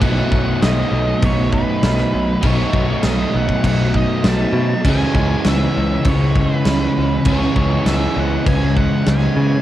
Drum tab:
CC |x---x---x---x---|x---x---x---x---|x---x---x---x---|x---x---x---x---|
SD |----o-------oo--|----o-------o---|----o-------o---|----o-------o---|
BD |o-o-----o-o-----|o-o----oo-o-----|o-o-----o-o-----|o-o-----o-o-----|